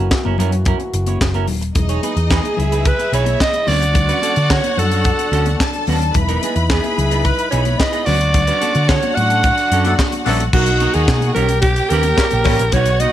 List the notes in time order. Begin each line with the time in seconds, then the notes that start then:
Already playing: E3 A#3 F#4
0.11 muted clean electric guitar stroke, kick, snare, clap, muted conga
0.25 F#1 C#4 E4 A#4, muted conga, high conga
0.38 F#2 C#4 E4 A#4, closed hi-hat, low conga
0.52 muted clean electric guitar stroke, closed hi-hat
0.65 C#4 E4 A#4, kick, closed hi-hat, muted conga
0.80 muted clean electric guitar stroke, closed hi-hat, muted conga
0.94 F#1, muted clean electric guitar stroke, closed hi-hat
1.07 C#4 E4 C#5, closed hi-hat, high conga
1.21 F#1, muted clean electric guitar stroke, kick, snare, clap, muted conga
1.34 C#4 E4 A#4, closed hi-hat, muted conga, high conga
1.48 D#1, muted clean electric guitar stroke, open hi-hat, high conga, low conga
1.61 muted clean electric guitar stroke, closed hi-hat
1.75 E1 E3 G#3 D#4 G#4 D#5, muted clean electric guitar stroke, kick, closed hi-hat, muted conga, low conga
1.89 D#4 G#4 C#5, closed hi-hat
2.03 D#4 G#4 B4, closed hi-hat, high conga
2.17 E2, muted clean electric guitar stroke, closed hi-hat
2.30 D#4 G#4 B4, kick, snare, clap, muted conga
2.43 muted clean electric guitar stroke, closed hi-hat, muted conga, high conga
2.57 C#2 E4 E5, muted clean electric guitar stroke, closed hi-hat, low conga
2.72 D#4 G#4 B4, closed hi-hat
2.85 B4, muted clean electric guitar stroke, kick, closed hi-hat, muted conga
2.99 muted clean electric guitar stroke, closed hi-hat, muted conga
3.13 B1 D#4 G#4 B4 C#5, closed hi-hat
3.26 muted clean electric guitar stroke, closed hi-hat, high conga
3.40 D#5, kick, snare, clap
3.54 muted clean electric guitar stroke, closed hi-hat, muted conga
3.67 D2 D3 F#3 C#4 D4 F#4 B4 D5 F#5, snare, open hi-hat, high conga, low conga
3.82 muted clean electric guitar stroke, closed hi-hat
3.94 muted clean electric guitar stroke, kick, closed hi-hat, muted conga, low conga
4.08 C#4 F#4 B4, closed hi-hat, muted conga
4.22 C#4 F#4 A4, closed hi-hat, high conga
4.36 D3, muted clean electric guitar stroke, closed hi-hat
4.50 C#4 F#4 A4 C#5, kick, snare, clap, muted conga
4.64 muted clean electric guitar stroke, closed hi-hat, muted conga, high conga
4.77 F#2 A4, muted clean electric guitar stroke, closed hi-hat, low conga
4.91 C#4 F#4 A4, closed hi-hat
5.04 kick, closed hi-hat
5.19 muted clean electric guitar stroke, closed hi-hat, muted conga
5.32 D2 C#4 F#4 A4, closed hi-hat
5.46 muted clean electric guitar stroke, closed hi-hat, high conga
5.59 A4 A5, kick, snare, clap
5.73 muted clean electric guitar stroke, closed hi-hat, muted conga
5.87 D#2 C#4 F#4 B4, open hi-hat, high conga, low conga
6.01 muted clean electric guitar stroke, closed hi-hat
6.14 E1 G#3 D#4 E4 B4 B5, muted clean electric guitar stroke, kick, closed hi-hat, low conga
6.28 B3 D#4 A#4, closed hi-hat, muted conga
6.43 B3 D#4 G#4, closed hi-hat, high conga
6.56 E2, muted clean electric guitar stroke, closed hi-hat
6.70 B3 D#4 G#4, kick, snare, clap, muted conga
6.84 muted clean electric guitar stroke, closed hi-hat, muted conga, high conga
6.97 C#2, muted clean electric guitar stroke, closed hi-hat, low conga
7.11 B3 D#4 G#4, closed hi-hat
7.24 B4, muted clean electric guitar stroke, kick, closed hi-hat, muted conga
7.38 muted clean electric guitar stroke, closed hi-hat
7.51 B1 B3 D#4 G#4 C#5, closed hi-hat
7.65 muted clean electric guitar stroke, closed hi-hat, high conga
7.79 D#5, muted clean electric guitar stroke, kick, snare, clap, muted conga
7.92 B3 D#4 G#4, closed hi-hat
8.05 D2 D3 F#3 C#4 D4 F#4 B4 D5 F#5, snare, open hi-hat, high conga, low conga
8.21 closed hi-hat
8.34 muted clean electric guitar stroke, kick, closed hi-hat, muted conga, low conga
8.47 C#4 F#4 B4, closed hi-hat, muted conga
8.61 C#4 F#4 A4, closed hi-hat, high conga
8.75 D3, muted clean electric guitar stroke, closed hi-hat
8.89 C#4 F#4 A4 C#5, kick, snare, clap, muted conga
9.02 muted clean electric guitar stroke, closed hi-hat, muted conga, high conga
9.15 A2 F#5, muted clean electric guitar stroke, closed hi-hat, low conga
9.30 C#4 F#4 A4, closed hi-hat
9.44 kick, closed hi-hat
9.58 muted clean electric guitar stroke, closed hi-hat
9.72 F#2 C#4 F#4 A4, closed hi-hat
9.84 F#3 A3 D4 A4, muted clean electric guitar stroke, closed hi-hat, high conga
9.99 kick, snare, clap
10.12 muted clean electric guitar stroke, closed hi-hat, high conga
10.25 A#1 F#3 A3 C#4 D4 F#4 A4 B4, snare, open hi-hat, high conga, low conga
10.40 muted clean electric guitar stroke, closed hi-hat
10.53 B1 B2 A#3 D#4 F#4 A#4 F#5, kick, crash, muted conga, low conga
10.66 closed hi-hat
10.80 D#4 F#4 A#4, closed hi-hat, high conga
10.94 D#2 D#4 F#4 G#4 A#4, closed hi-hat
11.08 B2, kick, snare, clap, muted conga
11.21 muted clean electric guitar stroke, closed hi-hat, muted conga, high conga
11.34 B1 C#3 B3 C#4 G4 A#4 C#5 G5, closed hi-hat, low conga
11.49 muted clean electric guitar stroke, closed hi-hat
11.61 G4, muted clean electric guitar stroke, kick, closed hi-hat
11.76 muted clean electric guitar stroke, closed hi-hat
11.89 D#2 C#4 G4 A#4 B4, closed hi-hat
12.03 muted clean electric guitar stroke, closed hi-hat, high conga
12.17 G3 A#3 C#4 A#4, kick, snare, clap, muted conga
12.31 A#1, muted clean electric guitar stroke, closed hi-hat, muted conga, high conga
12.44 A1 G3 A#3 C#4 G4 A#4, kick, snare, open hi-hat, high conga
12.48 B4
12.59 A#1, muted clean electric guitar stroke, closed hi-hat
12.72 B1 B2 G#3 D#4 F#4 C#5 F#5, kick, closed hi-hat, low conga
12.76 B4
12.86 closed hi-hat
13.00 D#4 F#4 B4 D#5, closed hi-hat, high conga